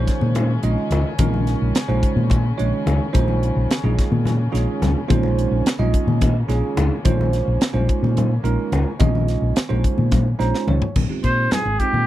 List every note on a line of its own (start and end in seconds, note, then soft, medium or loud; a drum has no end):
0.00 10.91 C#3 medium
0.00 10.92 D#3 medium
0.00 0.50 G#3 medium
0.00 3.10 G#3 medium
0.00 0.50 C#4 medium
0.00 10.92 C#4 medium
0.00 0.50 D#4 medium
0.00 0.50 F4 medium
0.00 0.50 C5 loud
0.07 kick medium
0.07 snare soft
0.07 closed hi-hat medium
0.21 0.57 A#2 medium
0.21 high conga medium
0.35 closed hi-hat medium
0.35 low conga medium
0.63 0.75 A#1 medium
0.63 1.09 G#3 medium
0.63 1.09 C#4 medium
0.63 1.09 D#4 medium
0.63 1.09 F4 medium
0.63 1.09 D#5 medium
0.63 closed hi-hat medium
0.78 low conga soft
0.90 1.02 C#2 medium
0.90 closed hi-hat medium
0.90 low conga medium
1.19 1.54 A#1 medium
1.19 1.76 G#3 medium
1.19 1.75 C#4 medium
1.19 1.76 D#4 medium
1.19 1.76 F4 medium
1.19 1.76 A#4 medium
1.19 kick loud
1.19 closed hi-hat medium
1.19 high conga loud
1.34 low conga medium
1.47 snare soft
1.47 closed hi-hat medium
1.61 1.73 A#1 medium
1.61 low conga soft
1.75 snare loud
1.75 closed hi-hat medium
1.88 2.00 A#1 medium
1.88 2.45 G#3 medium
1.88 2.45 C#4 medium
1.88 2.45 D#4 medium
1.88 2.45 F4 medium
1.88 2.45 C5 medium
1.88 low conga medium
2.03 kick medium
2.03 closed hi-hat medium
2.03 low conga soft
2.16 2.51 A#2 medium
2.16 high conga medium
2.30 kick loud
2.30 closed hi-hat medium
2.30 low conga medium
2.58 2.71 A#1 medium
2.58 3.04 G#3 medium
2.58 3.03 C#4 medium
2.58 3.04 D#4 medium
2.58 3.03 F4 medium
2.58 3.03 C#5 medium
2.58 closed hi-hat medium
2.73 low conga soft
2.86 2.98 C#2 medium
2.86 closed hi-hat medium
2.86 low conga medium
3.13 3.50 A#1 medium
3.13 3.70 G#3 medium
3.13 10.92 A#3 medium
3.13 3.70 C#4 medium
3.13 3.70 D#4 medium
3.13 3.70 F4 medium
3.13 3.70 C5 loud
3.13 kick loud
3.13 closed hi-hat medium
3.13 high conga medium
3.13 low conga soft
3.28 low conga medium
3.43 closed hi-hat medium
3.56 3.68 A#1 medium
3.70 muted fingered electric bass stroke soft
3.70 snare loud
3.70 closed hi-hat medium
3.84 3.96 A#1 medium
3.84 4.41 G#3 medium
3.84 4.41 C#4 medium
3.84 4.41 D#4 medium
3.84 4.40 F4 medium
3.84 4.40 G#4 medium
3.84 low conga medium
3.99 kick medium
3.99 snare soft
3.99 closed hi-hat medium
4.12 4.47 A#2 medium
4.12 high conga medium
4.25 snare soft
4.25 closed hi-hat medium
4.25 low conga medium
4.52 4.66 A#1 medium
4.52 4.98 G#3 medium
4.52 4.99 C#4 medium
4.52 4.98 D#4 medium
4.52 4.98 F4 medium
4.52 4.99 G#4 medium
4.52 snare soft
4.52 closed hi-hat medium
4.68 low conga soft
4.82 4.94 C#2 medium
4.82 snare soft
4.82 closed hi-hat medium
4.82 low conga loud
5.08 5.45 A#1 loud
5.08 5.66 G#3 medium
5.08 5.66 C#4 medium
5.08 5.66 D#4 medium
5.08 5.66 F4 medium
5.08 5.66 C5 medium
5.08 kick loud
5.08 closed hi-hat medium
5.08 high conga loud
5.08 low conga soft
5.23 low conga medium
5.39 closed hi-hat medium
5.51 5.63 A#1 medium
5.66 muted fingered electric bass stroke soft
5.66 snare loud
5.66 closed hi-hat medium
5.79 5.91 A#1 medium
5.79 6.36 G#3 medium
5.79 6.36 C#4 medium
5.79 6.36 D#4 medium
5.79 6.36 F4 medium
5.79 6.36 D#5 medium
5.79 low conga medium
5.94 kick medium
5.94 closed hi-hat medium
6.07 6.42 A#2 medium
6.07 high conga medium
6.21 kick loud
6.21 closed hi-hat medium
6.21 low conga medium
6.48 6.61 A#1 medium
6.48 6.94 G#3 medium
6.48 6.94 C#4 medium
6.48 6.94 D#4 medium
6.48 6.94 F4 medium
6.48 6.94 G#4 medium
6.48 snare soft
6.48 closed hi-hat medium
6.64 low conga soft
6.77 6.89 C#2 medium
6.77 closed hi-hat medium
6.77 low conga loud
7.05 7.40 A#1 loud
7.05 7.62 G#3 medium
7.05 7.61 C#4 medium
7.05 7.61 D#4 medium
7.05 7.61 F4 medium
7.05 7.62 C5 loud
7.05 kick loud
7.05 closed hi-hat medium
7.05 high conga loud
7.05 low conga soft
7.21 low conga medium
7.33 snare soft
7.33 closed hi-hat medium
7.48 7.59 A#1 medium
7.61 snare loud
7.61 closed hi-hat medium
7.73 7.86 A#1 medium
7.73 8.31 G#3 medium
7.73 8.31 C#4 medium
7.73 8.31 D#4 medium
7.73 8.31 F4 medium
7.73 8.31 C5 medium
7.73 low conga medium
7.89 kick medium
7.89 closed hi-hat medium
8.03 8.38 A#2 loud
8.03 high conga medium
8.17 closed hi-hat medium
8.17 low conga medium
8.44 8.56 A#1 medium
8.44 8.89 G#3 medium
8.44 8.89 C#4 medium
8.44 8.89 D#4 medium
8.44 8.90 F4 medium
8.44 8.89 A#4 loud
8.44 closed hi-hat medium
8.60 low conga soft
8.72 8.84 C#2 medium
8.72 closed hi-hat medium
8.72 low conga medium
8.99 9.36 A#1 medium
8.99 9.57 G#3 medium
8.99 9.56 C#4 medium
8.99 9.56 D#4 medium
8.99 9.56 F4 medium
8.99 9.56 D#5 medium
8.99 kick loud
8.99 closed hi-hat medium
8.99 high conga loud
9.15 low conga medium
9.28 snare soft
9.28 closed hi-hat medium
9.42 9.54 A#1 medium
9.56 snare loud
9.56 closed hi-hat medium
9.69 9.82 A#1 medium
9.69 10.26 G#3 medium
9.69 10.26 C#4 medium
9.69 10.26 D#4 medium
9.69 10.26 F4 medium
9.69 10.26 C5 medium
9.69 low conga medium
9.84 kick medium
9.84 closed hi-hat medium
9.84 low conga soft
9.98 10.33 A#2 medium
9.98 high conga medium
10.12 kick loud
10.12 snare soft
10.12 closed hi-hat medium
10.12 low conga medium
10.39 10.51 A#1 medium
10.39 10.85 G#3 medium
10.39 10.85 C#4 medium
10.39 10.85 D#4 medium
10.39 10.85 F4 medium
10.39 10.85 C5 loud
10.39 10.65 A#5 medium
10.39 snare soft
10.39 closed hi-hat medium
10.54 snare medium
10.67 10.79 C#2 medium
10.67 10.94 C#5 medium
10.67 mid tom medium
10.67 low conga medium
10.82 floor tom medium
10.96 11.08 A#1 medium
10.96 kick medium
10.96 crash medium
10.96 high conga medium
10.96 low conga medium
11.09 11.66 G#3 medium
11.09 11.66 C4 medium
11.09 11.66 D#4 medium
11.09 11.66 F4 medium
11.09 11.66 G4 medium
11.09 low conga soft
11.24 11.47 A#2 medium
11.24 11.53 C5 medium
11.24 kick medium
11.24 closed hi-hat medium
11.51 11.80 G#4 medium
11.51 muted fingered electric bass stroke soft
11.51 snare loud
11.51 closed hi-hat medium
11.51 low conga medium
11.65 11.77 G#1 medium
11.79 12.07 G#3 medium
11.79 12.07 C4 medium
11.79 12.07 D#4 medium
11.79 12.07 F4 medium
11.79 12.07 G4 medium
11.79 kick medium
11.79 closed hi-hat medium
11.93 12.07 A#2 medium
11.93 high conga medium
11.93 low conga medium